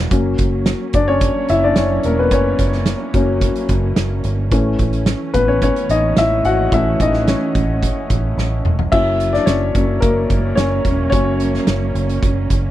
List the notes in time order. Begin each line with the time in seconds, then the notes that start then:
Already playing: F#3 B3 C#4 D4 B4 C#5
0.11 F#1 F#3 A#3 C#4, kick, closed hi-hat
0.38 F#1, kick, closed hi-hat
0.66 snare, closed hi-hat
0.93 F#1 D4 D5, kick, closed hi-hat
1.08 C#4 C#5
1.21 kick, closed hi-hat
1.49 F#1 E4 E5, closed hi-hat
1.64 D4 D5
1.76 F#1 C#4 C#5, snare, closed hi-hat
2.03 E1 A#3 A#4, closed hi-hat
2.19 B3 B4
2.31 F#1 C#4 C#5, kick, closed hi-hat
2.59 F#1, kick, closed hi-hat
2.72 snare
2.86 snare, closed hi-hat
3.14 F#1 F#3 A#3 C#4, kick, closed hi-hat
3.41 kick, closed hi-hat
3.56 closed hi-hat
3.69 F#1, kick, closed hi-hat
3.96 F#1, snare, closed hi-hat
4.24 G1, closed hi-hat
4.51 A1 E3 A3 C#4, kick, closed hi-hat
4.79 A1, kick, closed hi-hat
4.93 closed hi-hat
5.06 snare, closed hi-hat
5.34 A1 B3 B4, kick, closed hi-hat
5.48 C#4 C#5
5.62 C#4 C#5, kick, closed hi-hat
5.76 closed hi-hat
5.89 A1 D#4 D#5, closed hi-hat
6.17 A1 E4 E5, snare, closed hi-hat
6.43 G#1 F#4 F#5, closed hi-hat
6.72 A1 E3 A3 C#4 E4 E5, kick, closed hi-hat
7.00 A1 D#4 D#5, kick, closed hi-hat
7.13 snare
7.28 C#4 C#5, snare, closed hi-hat
7.55 A1, kick, closed hi-hat
7.83 kick, closed hi-hat
8.10 A1, kick, closed hi-hat
8.37 A1, snare
8.65 E1, mid tom
8.79 floor tom
8.92 F#1 F#3 A#3 C#4 E4 E5, kick, crash
9.20 closed hi-hat
9.33 D4 D5, snare
9.46 F#1 C#4 C#5, snare, closed hi-hat
9.75 F#1 F#3 A#3 C#4, kick, closed hi-hat
10.00 F#1 A#3 A#4, kick, closed hi-hat
10.30 F#1, kick, closed hi-hat
10.55 F#1 C#4 C#5, snare, closed hi-hat
10.85 E1, kick, closed hi-hat
11.10 F#1 F#3 A#3 C#4 C#5, kick, closed hi-hat
11.40 closed hi-hat
11.54 snare
11.67 F#1, snare, closed hi-hat
11.95 F#1, closed hi-hat
12.10 closed hi-hat
12.23 F#1, kick, closed hi-hat
12.50 F#1, kick, closed hi-hat